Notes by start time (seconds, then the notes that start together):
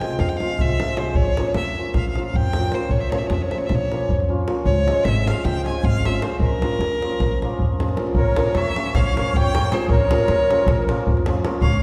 Already playing: G5
0.01 F3 G#3 C4 F4, davul high
0.10 davul high
0.19 F2 F5, davul high
0.29 G5, davul high
0.37 F5, davul high
0.42 F3 G#3 C4 F4
0.50 davul high
0.59 C2 E5, davul low
0.69 davul high
0.79 F3 G#3 C4 F4, davul high
0.89 davul high
0.97 F3 G#3 C4 F4 C5, davul high
1.06 davul high
1.15 A#1 C#5, davul low
1.26 davul high
1.37 F3 A#3 C#4 F4, davul high
1.46 davul high
1.54 F2 E5, davul high
1.65 davul high
1.77 F3 A#3 C#4 F4
1.85 davul high
1.94 A#1 F5, davul high, davul low
2.10 F5
2.16 F3 A#3 C#4 F4, davul high
2.25 F5
2.34 F2 G5, davul low
2.43 davul high
2.53 F3 A#3 C#4, davul high
2.59 F4
2.72 F3 A#3 C#4 F4 C5, davul high
2.89 A#1 C#5, davul low
3.00 E5, davul high
3.10 F3 A#3 C#4 C#5, davul high
3.14 F4
3.18 E5, davul high
3.26 F2 C#5, davul high
3.34 E5
3.41 C#5, davul high
3.51 F3 A#3 C#4 E5, davul high
3.55 F4 C#5
3.61 davul high
3.66 E5, davul high, davul low
3.70 A#1
3.75 C#5
3.91 F3 A#3 C#4 F4, davul high
4.09 F2, davul low
4.20 davul high
4.29 F3 A#3 C#4 F4
4.47 F3 A#3 C#4 F4, davul high
4.65 C#2 C#5, davul low
4.77 davul high
4.86 F3 G#3 C#4 F4, davul high
4.96 davul high
5.04 G#1 E5, davul high
5.16 davul high
5.25 F3 G#3 C#4 F4 F5, davul high
5.36 davul high
5.44 C#2 G5, davul high, davul low
5.66 F3 G#3 C#4 F4 G#5, davul high
5.83 G#1 F5, davul low
5.96 davul high
6.05 F3 G#3 C#4 F4 E5, davul high
6.22 F3 G#3 C#4 F4 C5, davul high
6.39 A#1 A#4, davul low
6.52 davul high
6.61 F3 A#3 C#4 F4, davul high
6.72 davul high
6.79 F2, davul high
6.91 davul high
7.01 F3 A#3 C#4 F4, davul high
7.12 davul high
7.20 A#1, davul high, davul low
7.32 davul high
7.42 F3 A#3 C#4 F4, davul high
7.51 davul high
7.59 F2, davul low
7.78 F3 A#3 C#4 F4, davul high
7.89 davul high
7.97 F3 A#3 C#4 F4, davul high
8.07 davul high
8.15 A#1 A#4 C#5, davul low
8.26 davul high
8.36 F3 A#3 C#4 F4, davul high
8.46 davul high
8.55 F2 C#5 E5, davul high
8.66 davul high
8.76 F3 A#3 C#4 F4, davul high
8.86 davul high
8.95 A#1 C#5 F5, davul high, davul low
9.16 F3 A#3 C#4 F4, davul high
9.33 F2 C#5 G5, davul low
9.45 davul high
9.54 F3 A#3 C#4 F4, davul high
9.72 F3 A#3 C#4 F4 G#4 C5, davul high
9.88 A#1 A#4 C#5, davul low
10.00 davul high
10.11 F3 A#3 C#4 F4, davul high
10.20 davul high
10.28 F2, davul high
10.39 davul high
10.50 F3 A#3 C#4 F4, davul high
10.59 davul high
10.66 A#1, davul high, davul low
10.88 F3 A#3 C#4 F4, davul high
11.07 F2, davul low
11.17 davul high
11.26 F3 A#3 C#4 F4, davul high
11.44 F3 A#3 C#4 F4, davul high
11.61 C#2 C#5 F5, davul low
11.73 davul high